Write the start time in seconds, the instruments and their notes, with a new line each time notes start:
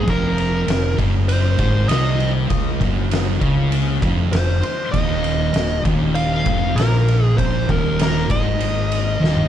Already playing: lead electric guitar G#4
0.06 fingered electric bass F1, distorted electric guitar F2, kick, ride
0.10 lead electric guitar A#4
0.38 ride
0.67 fingered electric bass F1, distorted electric guitar F2, snare, ride
0.97 fingered electric bass F#1, distorted electric guitar F#2, kick, ride
1.28 lead electric guitar C5, ride
1.58 fingered electric bass G#1, distorted electric guitar G#2, kick, ride
1.88 fingered electric bass C2, distorted electric guitar C3, lead electric guitar D#5, snare, ride
2.20 ride
2.49 fingered electric bass C#2, distorted electric guitar C#3, kick, ride
2.80 fingered electric bass F#1, distorted electric guitar F#2, kick, ride
3.11 snare, ride
3.40 fingered electric bass C#2, distorted electric guitar C#3, kick, ride
3.72 ride
4.01 fingered electric bass F1, distorted electric guitar F2, kick, ride
4.32 fingered electric bass F1, distorted electric guitar F2, lead electric guitar C5, snare, ride
4.50 snare
4.63 ride
4.91 fingered electric bass D#1, distorted electric guitar D#2, lead electric guitar D#5, kick, ride
5.24 ride
5.53 fingered electric bass D#1, distorted electric guitar D#2, snare, ride
5.83 fingered electric bass D#1, distorted electric guitar D#2, kick, ride
6.15 lead electric guitar F5, ride
6.44 fingered electric bass F1, distorted electric guitar F2, kick, ride
6.75 fingered electric bass A#1, distorted electric guitar A#2, lead electric guitar A#4, ride
6.80 snare
6.95 snare
7.08 ride
7.25 lead electric guitar G#4
7.36 fingered electric bass A#1, distorted electric guitar A#2, lead electric guitar C5, kick, ride
7.68 fingered electric bass D#1, distorted electric guitar D#2, lead electric guitar A#4, kick, ride
7.99 lead electric guitar A#4, snare, ride
8.28 fingered electric bass G#1, distorted electric guitar G#2, lead electric guitar D#5, kick, ride
8.61 ride
8.92 ride
9.20 fingered electric bass D#1, distorted electric guitar D#2
9.24 snare
9.37 high tom